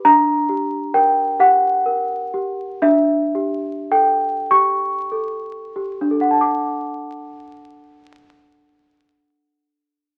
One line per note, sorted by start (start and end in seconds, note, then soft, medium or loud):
0.05 2.78 D4 medium
0.05 0.94 A#5 loud
0.49 1.21 G4 soft
0.94 1.67 A#4 soft
0.94 1.39 G5 medium
1.40 2.14 G4 medium
1.40 2.83 F#5 medium
1.86 2.63 A#4 soft
2.34 2.83 G4 soft
2.82 6.00 D4 medium
2.82 3.91 E5 medium
3.35 4.26 G4 soft
3.91 4.86 A4 soft
3.91 4.50 G5 medium
4.51 5.49 G4 medium
4.51 6.40 C#6 medium
5.12 6.10 A4 soft
5.76 6.40 G4 soft
6.01 9.99 D4 medium
6.11 10.09 A4 soft
6.21 10.18 F#5 soft
6.31 10.18 A5 soft
6.41 10.18 D6 soft